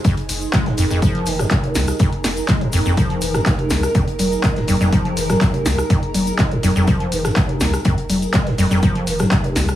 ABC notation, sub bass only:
X:1
M:4/4
L:1/16
Q:1/4=123
K:Fm
V:1 name="Sub bass" clef=bass
z2 F,,, z3 F,,, F,,, z2 F,,, z3 C,, z | z2 F,,, z3 F,,, F,,, z2 F,,, z3 C,, z | z2 F,,, z3 F,,, F,,, z2 F,,, z3 C,, z | z2 F,,, z3 F,,, F,,, z2 F,,, z3 C,, z |
z2 F,,, z3 F,,, F,,, z2 F,,, z3 C,, z |]